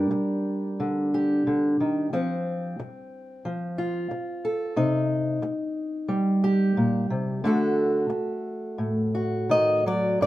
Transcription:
Already playing: steel-string acoustic guitar G3 D4 G4 A#4
0.11 muted steel-string acoustic guitar stroke
0.80 steel-string acoustic guitar D3
1.14 steel-string acoustic guitar G4
1.47 steel-string acoustic guitar D3
1.80 steel-string acoustic guitar D#3
2.13 steel-string acoustic guitar F3 C4
2.80 muted steel-string acoustic guitar stroke
3.45 steel-string acoustic guitar F3
3.78 steel-string acoustic guitar F4
4.11 muted steel-string acoustic guitar stroke
4.45 steel-string acoustic guitar A4
4.76 steel-string acoustic guitar C3 D#4
5.42 muted steel-string acoustic guitar stroke
6.08 steel-string acoustic guitar G3
6.44 steel-string acoustic guitar G4
6.77 steel-string acoustic guitar A#2
7.10 steel-string acoustic guitar C3
7.44 steel-string acoustic guitar D3 A3 F#4 A4
8.10 muted steel-string acoustic guitar stroke
8.78 steel-string acoustic guitar A2
9.15 steel-string acoustic guitar F#4
9.49 steel-string acoustic guitar D#3 D#5
9.86 steel-string acoustic guitar F#3 D5
10.21 steel-string acoustic guitar G2 D5

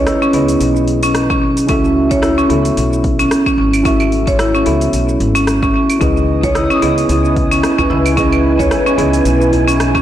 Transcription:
Already playing: synth keys C#4 E4 G#4 B4 D#5
0.07 marimba E4, cross-stick, open hi-hat, shaker
0.22 marimba C#4, shaker
0.31 upright bass C#2, marimba B3, synth keys C#4 E4 G#4 B4, open hi-hat
0.35 synth keys D#5
0.49 open hi-hat, shaker
0.61 upright bass B1, open hi-hat, shaker
0.76 shaker
0.88 open hi-hat
1.03 marimba C#4, open hi-hat, shaker
1.15 cross-stick, open hi-hat, shaker
1.30 marimba C#4, kick, cross-stick, shaker
1.42 marimba C#4
1.57 open hi-hat, shaker
1.66 upright bass C#2, synth keys C#4 E4 F#4 A4 E5, marimba C#4, kick, open hi-hat, shaker
1.85 shaker
2.11 marimba C#5, kick, open hi-hat, shaker
2.22 marimba E4, cross-stick, open hi-hat, shaker
2.38 marimba C#4, shaker
2.47 upright bass C#2, marimba B3, synth keys C#4 E4 F#4 A4 E5, open hi-hat
2.65 open hi-hat, shaker
2.77 upright bass B1, open hi-hat, shaker
2.93 shaker
3.04 kick, open hi-hat
3.19 marimba C#4, open hi-hat, shaker
3.31 cross-stick, open hi-hat, shaker
3.46 marimba C#4, kick, shaker
3.58 upright bass G#1, marimba C#4
3.73 open hi-hat, claves, shaker
3.82 synth keys C#4 E4 F#4 A4, marimba C#4, kick, open hi-hat, shaker
3.87 synth keys E5
4.00 claves, shaker
4.12 open hi-hat
4.27 marimba C#5, kick, open hi-hat, shaker
4.39 marimba E4, cross-stick, open hi-hat, shaker
4.54 marimba C#4, shaker
4.63 upright bass C#2, marimba B3, synth keys C#4 E4 F#4 A4 E5, open hi-hat
4.81 open hi-hat, shaker
4.93 upright bass B1, open hi-hat, shaker
5.09 shaker
5.20 upright bass G#1, open hi-hat
5.35 marimba C#4, open hi-hat, shaker
5.47 cross-stick, open hi-hat, shaker
5.63 marimba C#4, kick, cross-stick, shaker
5.74 marimba C#4
5.90 open hi-hat, claves, shaker
5.99 upright bass C#2, synth keys C#4 E4 G#4 B4, marimba C#4, analog synth pad E4 B4 D#6, kick, open hi-hat, shaker
6.03 synth keys D#5, synth texture G#5
6.17 shaker
6.43 marimba C#5, kick, open hi-hat, djembe tone, djembe bass, shaker
6.55 marimba E4, cross-stick, open hi-hat, shaker
6.70 marimba C#4, shaker
6.80 upright bass C#2, marimba B3, synth keys C#4 E4 G#4 B4, open hi-hat, djembe slap
6.84 synth keys D#5
6.98 open hi-hat, shaker
7.09 upright bass C#2, open hi-hat, djembe tone, shaker
7.25 shaker
7.37 kick, open hi-hat
7.51 marimba C#4, open hi-hat, shaker
7.63 cross-stick, open hi-hat, shaker
7.78 marimba C#4, kick, djembe bass, shaker
7.90 upright bass C#2, marimba E4, djembe tone
8.06 open hi-hat, claves, shaker
8.15 synth keys C#4 E4 G#4 B4 D#5, marimba C#4, kick, open hi-hat, shaker
8.33 claves, shaker
8.59 marimba C#5, kick, open hi-hat, djembe bass, shaker
8.71 marimba E4, cross-stick, open hi-hat, shaker
8.86 marimba C#4, shaker
8.96 upright bass C#2, marimba B3, synth keys C#4 E4 G#4 B4 D#5, open hi-hat, djembe slap
9.13 open hi-hat, shaker
9.25 upright bass B1, open hi-hat, shaker
9.41 shaker
9.52 open hi-hat, djembe tone
9.68 marimba C#4, open hi-hat, djembe slap, shaker
9.80 cross-stick, open hi-hat, shaker
9.95 marimba C#4, kick, cross-stick, shaker

